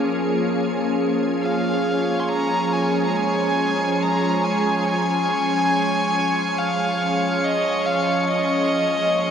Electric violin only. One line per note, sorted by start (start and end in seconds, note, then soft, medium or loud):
1.42 2.21 F5 medium
2.20 2.30 C6 medium
2.29 2.75 A#5 medium
2.73 3.05 G#5 medium
3.05 3.18 A#5 medium
3.17 4.04 G#5 medium
4.03 4.46 A#5 medium
4.44 4.85 G#5 medium
4.86 6.60 G#5 loud
6.59 7.31 F5 medium
7.31 7.46 F5 medium
7.44 7.88 D#5 medium
7.86 8.28 F5 medium
8.30 9.31 D#5 medium